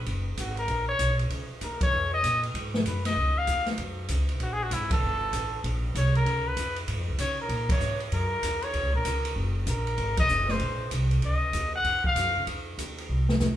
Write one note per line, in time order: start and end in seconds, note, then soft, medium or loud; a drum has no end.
0.06 0.37 F#1 medium
0.06 kick soft
0.06 ride soft
0.37 0.68 G#1 medium
0.37 0.57 F#4 medium
0.37 kick soft
0.37 hi-hat pedal medium
0.37 ride medium
0.57 0.87 A#4 medium
0.57 ride soft
0.68 0.98 A#1 medium
0.68 kick soft
0.68 ride medium
0.89 1.17 C#5 medium
0.99 1.29 B1 medium
0.99 kick soft
0.99 hi-hat pedal medium
0.99 ride medium
1.19 ride soft
1.30 1.48 C#2 medium
1.30 kick soft
1.30 ride medium
1.50 muted upright bass stroke soft
1.61 1.92 D#2 medium
1.61 1.81 A#4 medium
1.61 kick soft
1.61 hi-hat pedal soft
1.61 ride medium
1.81 2.11 C#5 medium
1.81 kick medium
1.81 ride medium
1.93 2.22 F2 medium
2.13 2.42 D#5 medium
2.23 2.53 A#2 medium
2.23 kick soft
2.23 hi-hat pedal medium
2.23 ride medium
2.43 ride soft
2.54 2.84 G#2 medium
2.54 kick soft
2.54 ride medium
2.74 snare soft
2.85 3.15 F#2 medium
2.85 3.05 B4 medium
2.85 kick soft
2.85 hi-hat pedal soft
2.85 ride medium
3.05 3.39 D#5 medium
3.05 snare soft
3.05 ride medium
3.16 3.47 C#2 medium
3.16 kick soft
3.38 3.68 F5 medium
3.47 3.77 D#2 medium
3.47 kick soft
3.47 hi-hat pedal soft
3.47 ride medium
3.66 snare soft
3.66 ride soft
3.78 4.08 F#2 medium
3.78 kick soft
3.78 ride medium
4.09 4.39 C#2 medium
4.09 kick soft
4.09 hi-hat pedal soft
4.09 ride medium
4.29 ride soft
4.40 4.70 A#1 medium
4.40 4.54 F#4 medium
4.40 kick soft
4.40 ride medium
4.53 4.65 G#4 medium
4.63 4.75 F#4 medium
4.71 5.01 G#1 medium
4.71 4.92 E4 medium
4.71 kick soft
4.71 hi-hat pedal medium
4.71 ride medium
4.91 5.61 A4 medium
4.91 kick medium
4.91 ride medium
5.03 5.32 G1 medium
5.33 5.63 A1 medium
5.33 kick soft
5.33 hi-hat pedal medium
5.33 ride medium
5.64 5.94 A#1 medium
5.64 kick soft
5.64 ride medium
5.95 6.25 C2 medium
5.95 6.14 C#5 medium
5.95 kick soft
5.95 hi-hat pedal medium
5.95 ride medium
6.15 6.49 A#4 medium
6.15 ride soft
6.26 6.56 C#2 medium
6.26 kick soft
6.26 ride soft
6.47 6.77 B4 medium
6.56 6.87 F2 medium
6.56 kick soft
6.56 hi-hat pedal medium
6.56 ride medium
6.76 ride soft
6.87 6.98 G#2 medium
6.87 kick soft
6.87 ride medium
6.98 7.08 F2 medium
7.08 7.18 C#2 medium
7.18 7.49 C#3 medium
7.18 7.38 C#5 medium
7.18 kick soft
7.18 hi-hat pedal medium
7.18 ride medium
7.41 7.69 A#4 medium
7.49 7.79 A#2 medium
7.49 kick soft
7.49 ride medium
7.69 7.99 C#5 medium
7.69 kick medium
7.69 ride medium
7.80 8.11 G#2 medium
7.80 hi-hat pedal soft
8.00 ride soft
8.12 8.42 F#2 medium
8.12 8.65 A#4 medium
8.12 kick soft
8.12 ride medium
8.43 8.73 E2 medium
8.43 kick soft
8.43 hi-hat pedal medium
8.43 ride medium
8.62 8.94 C#5 medium
8.62 ride soft
8.74 8.83 D#2 medium
8.74 kick soft
8.74 ride medium
8.83 8.93 C#2 medium
8.94 9.04 A#1 medium
8.94 9.34 A#4 medium
9.05 9.35 C#2 medium
9.05 kick soft
9.05 hi-hat pedal medium
9.05 ride medium
9.25 ride medium
9.36 9.66 F#1 medium
9.36 kick soft
9.67 9.97 A#1 medium
9.67 10.16 A#4 medium
9.67 kick soft
9.67 hi-hat pedal medium
9.67 ride medium
9.87 ride soft
9.98 10.28 G#1 medium
9.98 kick soft
9.98 ride medium
10.17 10.52 D#5 loud
10.17 kick medium
10.17 ride medium
10.29 10.59 F#1 medium
10.29 hi-hat pedal medium
10.48 10.92 C5 medium
10.48 snare soft
10.59 10.90 A#1 medium
10.59 kick soft
10.59 ride medium
10.91 11.21 C2 medium
10.91 kick soft
10.91 hi-hat pedal soft
10.91 ride medium
11.11 ride soft
11.22 11.53 C#2 medium
11.22 11.71 D#5 medium
11.22 kick soft
11.22 ride soft
11.53 11.84 D#2 medium
11.53 kick soft
11.53 hi-hat pedal medium
11.53 ride medium
11.75 12.04 F#5 medium
11.84 12.15 F2 medium
11.84 kick soft
11.84 ride medium
12.04 12.45 F5 medium
12.04 kick medium
12.16 12.26 F#2 medium
12.16 kick soft
12.16 hi-hat pedal medium
12.16 ride medium
12.26 12.36 F2 soft
12.37 12.47 C#2 medium
12.47 12.77 F2 medium
12.47 kick soft
12.47 ride medium
12.78 13.08 D#2 medium
12.78 kick soft
12.78 hi-hat pedal medium
12.78 ride medium
12.98 ride soft
13.09 13.39 C2 medium
13.29 snare medium
13.40 13.57 E2 medium
13.40 snare medium
13.40 hi-hat pedal medium